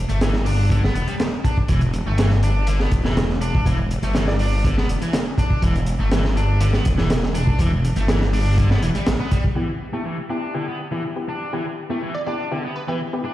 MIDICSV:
0, 0, Header, 1, 6, 480
1, 0, Start_track
1, 0, Key_signature, 1, "minor"
1, 0, Tempo, 491803
1, 1652, Time_signature, 4, 2, 24, 8
1, 13017, End_track
2, 0, Start_track
2, 0, Title_t, "Digital synth lead"
2, 0, Program_c, 0, 84
2, 4175, Note_on_c, 0, 74, 87
2, 4250, Note_off_c, 0, 74, 0
2, 4295, Note_on_c, 0, 74, 78
2, 4372, Note_off_c, 0, 74, 0
2, 11853, Note_on_c, 0, 74, 83
2, 11929, Note_off_c, 0, 74, 0
2, 11970, Note_on_c, 0, 74, 75
2, 12049, Note_off_c, 0, 74, 0
2, 12450, Note_on_c, 0, 71, 81
2, 12529, Note_off_c, 0, 71, 0
2, 12572, Note_on_c, 0, 71, 66
2, 12649, Note_off_c, 0, 71, 0
2, 13017, End_track
3, 0, Start_track
3, 0, Title_t, "Synth stab"
3, 0, Program_c, 1, 62
3, 9331, Note_on_c, 1, 59, 83
3, 9331, Note_on_c, 1, 67, 93
3, 9332, Note_on_c, 1, 64, 74
3, 9461, Note_off_c, 1, 59, 0
3, 9461, Note_off_c, 1, 64, 0
3, 9461, Note_off_c, 1, 67, 0
3, 9693, Note_on_c, 1, 64, 70
3, 9693, Note_on_c, 1, 67, 80
3, 9694, Note_on_c, 1, 59, 71
3, 10024, Note_off_c, 1, 59, 0
3, 10024, Note_off_c, 1, 64, 0
3, 10024, Note_off_c, 1, 67, 0
3, 10051, Note_on_c, 1, 64, 79
3, 10052, Note_on_c, 1, 59, 88
3, 10052, Note_on_c, 1, 67, 91
3, 10264, Note_off_c, 1, 59, 0
3, 10264, Note_off_c, 1, 64, 0
3, 10264, Note_off_c, 1, 67, 0
3, 10291, Note_on_c, 1, 59, 78
3, 10291, Note_on_c, 1, 64, 72
3, 10291, Note_on_c, 1, 67, 86
3, 10421, Note_off_c, 1, 59, 0
3, 10421, Note_off_c, 1, 64, 0
3, 10421, Note_off_c, 1, 67, 0
3, 10654, Note_on_c, 1, 64, 68
3, 10654, Note_on_c, 1, 67, 80
3, 10655, Note_on_c, 1, 59, 77
3, 10865, Note_off_c, 1, 59, 0
3, 10865, Note_off_c, 1, 64, 0
3, 10865, Note_off_c, 1, 67, 0
3, 10893, Note_on_c, 1, 59, 74
3, 10893, Note_on_c, 1, 67, 83
3, 10894, Note_on_c, 1, 64, 70
3, 11020, Note_off_c, 1, 59, 0
3, 11020, Note_off_c, 1, 64, 0
3, 11020, Note_off_c, 1, 67, 0
3, 11251, Note_on_c, 1, 59, 87
3, 11251, Note_on_c, 1, 64, 75
3, 11251, Note_on_c, 1, 67, 94
3, 11381, Note_off_c, 1, 59, 0
3, 11381, Note_off_c, 1, 64, 0
3, 11381, Note_off_c, 1, 67, 0
3, 11615, Note_on_c, 1, 59, 76
3, 11615, Note_on_c, 1, 64, 67
3, 11615, Note_on_c, 1, 67, 82
3, 11944, Note_off_c, 1, 59, 0
3, 11944, Note_off_c, 1, 64, 0
3, 11945, Note_off_c, 1, 67, 0
3, 11973, Note_on_c, 1, 64, 81
3, 11973, Note_on_c, 1, 67, 94
3, 11974, Note_on_c, 1, 59, 86
3, 12184, Note_off_c, 1, 64, 0
3, 12184, Note_off_c, 1, 67, 0
3, 12185, Note_off_c, 1, 59, 0
3, 12213, Note_on_c, 1, 59, 81
3, 12213, Note_on_c, 1, 64, 70
3, 12213, Note_on_c, 1, 67, 89
3, 12342, Note_off_c, 1, 59, 0
3, 12342, Note_off_c, 1, 64, 0
3, 12342, Note_off_c, 1, 67, 0
3, 12573, Note_on_c, 1, 67, 81
3, 12574, Note_on_c, 1, 59, 75
3, 12574, Note_on_c, 1, 64, 70
3, 12785, Note_off_c, 1, 59, 0
3, 12785, Note_off_c, 1, 64, 0
3, 12785, Note_off_c, 1, 67, 0
3, 12815, Note_on_c, 1, 59, 76
3, 12815, Note_on_c, 1, 64, 68
3, 12815, Note_on_c, 1, 67, 85
3, 12941, Note_off_c, 1, 59, 0
3, 12941, Note_off_c, 1, 64, 0
3, 12941, Note_off_c, 1, 67, 0
3, 13017, End_track
4, 0, Start_track
4, 0, Title_t, "Distorted electric guitar"
4, 0, Program_c, 2, 30
4, 94, Note_on_c, 2, 57, 69
4, 200, Note_off_c, 2, 57, 0
4, 213, Note_on_c, 2, 52, 79
4, 321, Note_off_c, 2, 52, 0
4, 451, Note_on_c, 2, 62, 71
4, 680, Note_off_c, 2, 62, 0
4, 691, Note_on_c, 2, 50, 94
4, 801, Note_off_c, 2, 50, 0
4, 813, Note_on_c, 2, 59, 68
4, 920, Note_off_c, 2, 59, 0
4, 931, Note_on_c, 2, 59, 70
4, 1047, Note_off_c, 2, 59, 0
4, 1051, Note_on_c, 2, 55, 74
4, 1116, Note_off_c, 2, 55, 0
4, 1411, Note_on_c, 2, 62, 70
4, 1527, Note_off_c, 2, 62, 0
4, 1651, Note_on_c, 2, 52, 94
4, 1761, Note_off_c, 2, 52, 0
4, 2015, Note_on_c, 2, 57, 72
4, 2121, Note_off_c, 2, 57, 0
4, 2131, Note_on_c, 2, 52, 78
4, 2241, Note_off_c, 2, 52, 0
4, 2373, Note_on_c, 2, 62, 73
4, 2601, Note_off_c, 2, 62, 0
4, 2611, Note_on_c, 2, 50, 96
4, 2720, Note_off_c, 2, 50, 0
4, 2732, Note_on_c, 2, 59, 69
4, 2839, Note_off_c, 2, 59, 0
4, 2973, Note_on_c, 2, 52, 94
4, 3080, Note_off_c, 2, 52, 0
4, 3333, Note_on_c, 2, 62, 71
4, 3561, Note_off_c, 2, 62, 0
4, 3574, Note_on_c, 2, 52, 101
4, 3682, Note_off_c, 2, 52, 0
4, 3936, Note_on_c, 2, 57, 74
4, 4041, Note_off_c, 2, 57, 0
4, 4054, Note_on_c, 2, 52, 80
4, 4162, Note_off_c, 2, 52, 0
4, 4294, Note_on_c, 2, 62, 73
4, 4521, Note_off_c, 2, 62, 0
4, 4533, Note_on_c, 2, 50, 96
4, 4642, Note_off_c, 2, 50, 0
4, 4654, Note_on_c, 2, 59, 72
4, 4760, Note_off_c, 2, 59, 0
4, 4895, Note_on_c, 2, 52, 101
4, 5001, Note_off_c, 2, 52, 0
4, 5255, Note_on_c, 2, 62, 73
4, 5482, Note_off_c, 2, 62, 0
4, 5494, Note_on_c, 2, 52, 96
4, 5602, Note_off_c, 2, 52, 0
4, 5857, Note_on_c, 2, 57, 76
4, 5962, Note_off_c, 2, 57, 0
4, 5974, Note_on_c, 2, 52, 79
4, 6082, Note_off_c, 2, 52, 0
4, 6215, Note_on_c, 2, 62, 72
4, 6442, Note_off_c, 2, 62, 0
4, 6452, Note_on_c, 2, 50, 99
4, 6561, Note_off_c, 2, 50, 0
4, 6572, Note_on_c, 2, 59, 71
4, 6679, Note_off_c, 2, 59, 0
4, 6813, Note_on_c, 2, 52, 96
4, 6920, Note_off_c, 2, 52, 0
4, 7175, Note_on_c, 2, 62, 76
4, 7402, Note_off_c, 2, 62, 0
4, 7414, Note_on_c, 2, 52, 100
4, 7522, Note_off_c, 2, 52, 0
4, 7777, Note_on_c, 2, 57, 77
4, 7882, Note_off_c, 2, 57, 0
4, 7894, Note_on_c, 2, 52, 79
4, 8002, Note_off_c, 2, 52, 0
4, 8133, Note_on_c, 2, 62, 76
4, 8361, Note_off_c, 2, 62, 0
4, 8373, Note_on_c, 2, 50, 97
4, 8482, Note_off_c, 2, 50, 0
4, 8496, Note_on_c, 2, 59, 72
4, 8601, Note_off_c, 2, 59, 0
4, 8613, Note_on_c, 2, 52, 75
4, 8678, Note_off_c, 2, 52, 0
4, 8734, Note_on_c, 2, 55, 74
4, 8840, Note_off_c, 2, 55, 0
4, 8976, Note_on_c, 2, 59, 75
4, 9088, Note_off_c, 2, 59, 0
4, 9093, Note_on_c, 2, 55, 72
4, 9201, Note_off_c, 2, 55, 0
4, 9331, Note_on_c, 2, 52, 86
4, 9441, Note_off_c, 2, 52, 0
4, 9694, Note_on_c, 2, 57, 66
4, 9800, Note_off_c, 2, 57, 0
4, 9812, Note_on_c, 2, 52, 75
4, 9921, Note_off_c, 2, 52, 0
4, 10051, Note_on_c, 2, 62, 68
4, 10280, Note_off_c, 2, 62, 0
4, 10291, Note_on_c, 2, 50, 90
4, 10401, Note_off_c, 2, 50, 0
4, 10414, Note_on_c, 2, 59, 66
4, 10520, Note_off_c, 2, 59, 0
4, 10654, Note_on_c, 2, 52, 91
4, 10760, Note_off_c, 2, 52, 0
4, 11015, Note_on_c, 2, 62, 64
4, 11242, Note_off_c, 2, 62, 0
4, 11255, Note_on_c, 2, 52, 88
4, 11363, Note_off_c, 2, 52, 0
4, 11616, Note_on_c, 2, 57, 70
4, 11721, Note_off_c, 2, 57, 0
4, 11735, Note_on_c, 2, 52, 71
4, 11842, Note_off_c, 2, 52, 0
4, 11975, Note_on_c, 2, 62, 68
4, 12202, Note_off_c, 2, 62, 0
4, 12214, Note_on_c, 2, 50, 89
4, 12322, Note_off_c, 2, 50, 0
4, 12335, Note_on_c, 2, 59, 64
4, 12441, Note_off_c, 2, 59, 0
4, 12575, Note_on_c, 2, 52, 88
4, 12681, Note_off_c, 2, 52, 0
4, 12932, Note_on_c, 2, 62, 65
4, 13017, Note_off_c, 2, 62, 0
4, 13017, End_track
5, 0, Start_track
5, 0, Title_t, "Detuned saw bass"
5, 0, Program_c, 3, 39
5, 94, Note_on_c, 3, 31, 86
5, 880, Note_off_c, 3, 31, 0
5, 931, Note_on_c, 3, 28, 81
5, 1020, Note_off_c, 3, 28, 0
5, 1650, Note_on_c, 3, 28, 102
5, 1960, Note_off_c, 3, 28, 0
5, 2014, Note_on_c, 3, 31, 84
5, 2801, Note_off_c, 3, 31, 0
5, 2847, Note_on_c, 3, 28, 89
5, 3518, Note_off_c, 3, 28, 0
5, 3569, Note_on_c, 3, 28, 98
5, 3879, Note_off_c, 3, 28, 0
5, 3933, Note_on_c, 3, 31, 88
5, 4720, Note_off_c, 3, 31, 0
5, 4773, Note_on_c, 3, 28, 77
5, 4861, Note_off_c, 3, 28, 0
5, 5487, Note_on_c, 3, 28, 98
5, 5798, Note_off_c, 3, 28, 0
5, 5854, Note_on_c, 3, 31, 88
5, 6641, Note_off_c, 3, 31, 0
5, 6696, Note_on_c, 3, 28, 96
5, 7362, Note_off_c, 3, 28, 0
5, 7405, Note_on_c, 3, 28, 100
5, 7717, Note_off_c, 3, 28, 0
5, 7774, Note_on_c, 3, 31, 92
5, 8561, Note_off_c, 3, 31, 0
5, 8612, Note_on_c, 3, 28, 80
5, 8700, Note_off_c, 3, 28, 0
5, 8733, Note_on_c, 3, 33, 45
5, 8828, Note_off_c, 3, 33, 0
5, 8852, Note_on_c, 3, 33, 89
5, 8940, Note_off_c, 3, 33, 0
5, 13017, End_track
6, 0, Start_track
6, 0, Title_t, "Drums"
6, 91, Note_on_c, 9, 42, 42
6, 188, Note_off_c, 9, 42, 0
6, 207, Note_on_c, 9, 42, 77
6, 209, Note_on_c, 9, 38, 105
6, 305, Note_off_c, 9, 42, 0
6, 307, Note_off_c, 9, 38, 0
6, 324, Note_on_c, 9, 38, 46
6, 422, Note_off_c, 9, 38, 0
6, 448, Note_on_c, 9, 46, 69
6, 546, Note_off_c, 9, 46, 0
6, 686, Note_on_c, 9, 36, 101
6, 692, Note_on_c, 9, 42, 85
6, 783, Note_off_c, 9, 36, 0
6, 789, Note_off_c, 9, 42, 0
6, 823, Note_on_c, 9, 38, 48
6, 921, Note_off_c, 9, 38, 0
6, 932, Note_on_c, 9, 42, 59
6, 1029, Note_off_c, 9, 42, 0
6, 1051, Note_on_c, 9, 42, 42
6, 1148, Note_off_c, 9, 42, 0
6, 1168, Note_on_c, 9, 42, 75
6, 1171, Note_on_c, 9, 38, 105
6, 1266, Note_off_c, 9, 42, 0
6, 1269, Note_off_c, 9, 38, 0
6, 1410, Note_on_c, 9, 36, 93
6, 1413, Note_on_c, 9, 42, 57
6, 1508, Note_off_c, 9, 36, 0
6, 1510, Note_off_c, 9, 42, 0
6, 1536, Note_on_c, 9, 36, 92
6, 1634, Note_off_c, 9, 36, 0
6, 1644, Note_on_c, 9, 42, 89
6, 1650, Note_on_c, 9, 36, 100
6, 1741, Note_off_c, 9, 42, 0
6, 1748, Note_off_c, 9, 36, 0
6, 1768, Note_on_c, 9, 42, 41
6, 1865, Note_off_c, 9, 42, 0
6, 1888, Note_on_c, 9, 42, 70
6, 1985, Note_off_c, 9, 42, 0
6, 2128, Note_on_c, 9, 42, 85
6, 2137, Note_on_c, 9, 38, 112
6, 2225, Note_off_c, 9, 42, 0
6, 2234, Note_off_c, 9, 38, 0
6, 2243, Note_on_c, 9, 38, 45
6, 2341, Note_off_c, 9, 38, 0
6, 2370, Note_on_c, 9, 42, 62
6, 2467, Note_off_c, 9, 42, 0
6, 2604, Note_on_c, 9, 42, 84
6, 2702, Note_off_c, 9, 42, 0
6, 2732, Note_on_c, 9, 38, 42
6, 2829, Note_off_c, 9, 38, 0
6, 2846, Note_on_c, 9, 42, 65
6, 2848, Note_on_c, 9, 36, 88
6, 2943, Note_off_c, 9, 42, 0
6, 2945, Note_off_c, 9, 36, 0
6, 2975, Note_on_c, 9, 38, 57
6, 3073, Note_off_c, 9, 38, 0
6, 3093, Note_on_c, 9, 42, 76
6, 3095, Note_on_c, 9, 38, 111
6, 3191, Note_off_c, 9, 42, 0
6, 3192, Note_off_c, 9, 38, 0
6, 3218, Note_on_c, 9, 38, 44
6, 3316, Note_off_c, 9, 38, 0
6, 3331, Note_on_c, 9, 42, 68
6, 3429, Note_off_c, 9, 42, 0
6, 3462, Note_on_c, 9, 36, 94
6, 3560, Note_off_c, 9, 36, 0
6, 3569, Note_on_c, 9, 36, 107
6, 3574, Note_on_c, 9, 42, 81
6, 3667, Note_off_c, 9, 36, 0
6, 3671, Note_off_c, 9, 42, 0
6, 3813, Note_on_c, 9, 42, 60
6, 3911, Note_off_c, 9, 42, 0
6, 3930, Note_on_c, 9, 42, 42
6, 4028, Note_off_c, 9, 42, 0
6, 4047, Note_on_c, 9, 38, 98
6, 4051, Note_on_c, 9, 42, 91
6, 4145, Note_off_c, 9, 38, 0
6, 4149, Note_off_c, 9, 42, 0
6, 4170, Note_on_c, 9, 38, 47
6, 4268, Note_off_c, 9, 38, 0
6, 4286, Note_on_c, 9, 46, 78
6, 4384, Note_off_c, 9, 46, 0
6, 4534, Note_on_c, 9, 36, 102
6, 4537, Note_on_c, 9, 42, 81
6, 4631, Note_off_c, 9, 36, 0
6, 4634, Note_off_c, 9, 42, 0
6, 4663, Note_on_c, 9, 38, 53
6, 4760, Note_off_c, 9, 38, 0
6, 4775, Note_on_c, 9, 42, 69
6, 4872, Note_off_c, 9, 42, 0
6, 4896, Note_on_c, 9, 42, 42
6, 4994, Note_off_c, 9, 42, 0
6, 5010, Note_on_c, 9, 38, 105
6, 5010, Note_on_c, 9, 42, 86
6, 5107, Note_off_c, 9, 38, 0
6, 5108, Note_off_c, 9, 42, 0
6, 5249, Note_on_c, 9, 36, 91
6, 5253, Note_on_c, 9, 42, 65
6, 5346, Note_off_c, 9, 36, 0
6, 5351, Note_off_c, 9, 42, 0
6, 5372, Note_on_c, 9, 36, 93
6, 5470, Note_off_c, 9, 36, 0
6, 5487, Note_on_c, 9, 42, 80
6, 5488, Note_on_c, 9, 36, 106
6, 5585, Note_off_c, 9, 42, 0
6, 5586, Note_off_c, 9, 36, 0
6, 5617, Note_on_c, 9, 42, 44
6, 5715, Note_off_c, 9, 42, 0
6, 5723, Note_on_c, 9, 42, 63
6, 5820, Note_off_c, 9, 42, 0
6, 5968, Note_on_c, 9, 42, 89
6, 5970, Note_on_c, 9, 38, 113
6, 6066, Note_off_c, 9, 42, 0
6, 6067, Note_off_c, 9, 38, 0
6, 6095, Note_on_c, 9, 38, 46
6, 6193, Note_off_c, 9, 38, 0
6, 6216, Note_on_c, 9, 42, 59
6, 6314, Note_off_c, 9, 42, 0
6, 6447, Note_on_c, 9, 42, 86
6, 6544, Note_off_c, 9, 42, 0
6, 6573, Note_on_c, 9, 38, 45
6, 6671, Note_off_c, 9, 38, 0
6, 6686, Note_on_c, 9, 42, 69
6, 6695, Note_on_c, 9, 36, 99
6, 6783, Note_off_c, 9, 42, 0
6, 6793, Note_off_c, 9, 36, 0
6, 6814, Note_on_c, 9, 38, 51
6, 6911, Note_off_c, 9, 38, 0
6, 6930, Note_on_c, 9, 42, 88
6, 6934, Note_on_c, 9, 38, 110
6, 7027, Note_off_c, 9, 42, 0
6, 7032, Note_off_c, 9, 38, 0
6, 7055, Note_on_c, 9, 38, 50
6, 7152, Note_off_c, 9, 38, 0
6, 7172, Note_on_c, 9, 42, 66
6, 7270, Note_off_c, 9, 42, 0
6, 7292, Note_on_c, 9, 36, 96
6, 7390, Note_off_c, 9, 36, 0
6, 7406, Note_on_c, 9, 36, 114
6, 7408, Note_on_c, 9, 42, 88
6, 7503, Note_off_c, 9, 36, 0
6, 7506, Note_off_c, 9, 42, 0
6, 7657, Note_on_c, 9, 42, 59
6, 7754, Note_off_c, 9, 42, 0
6, 7770, Note_on_c, 9, 42, 45
6, 7867, Note_off_c, 9, 42, 0
6, 7889, Note_on_c, 9, 38, 109
6, 7893, Note_on_c, 9, 42, 81
6, 7987, Note_off_c, 9, 38, 0
6, 7990, Note_off_c, 9, 42, 0
6, 8014, Note_on_c, 9, 38, 49
6, 8112, Note_off_c, 9, 38, 0
6, 8132, Note_on_c, 9, 46, 81
6, 8229, Note_off_c, 9, 46, 0
6, 8373, Note_on_c, 9, 36, 99
6, 8374, Note_on_c, 9, 42, 84
6, 8471, Note_off_c, 9, 36, 0
6, 8472, Note_off_c, 9, 42, 0
6, 8499, Note_on_c, 9, 38, 50
6, 8597, Note_off_c, 9, 38, 0
6, 8613, Note_on_c, 9, 42, 72
6, 8711, Note_off_c, 9, 42, 0
6, 8734, Note_on_c, 9, 42, 48
6, 8832, Note_off_c, 9, 42, 0
6, 8846, Note_on_c, 9, 42, 83
6, 8849, Note_on_c, 9, 38, 114
6, 8944, Note_off_c, 9, 42, 0
6, 8946, Note_off_c, 9, 38, 0
6, 9090, Note_on_c, 9, 42, 63
6, 9093, Note_on_c, 9, 36, 88
6, 9188, Note_off_c, 9, 42, 0
6, 9191, Note_off_c, 9, 36, 0
6, 9216, Note_on_c, 9, 36, 100
6, 9314, Note_off_c, 9, 36, 0
6, 13017, End_track
0, 0, End_of_file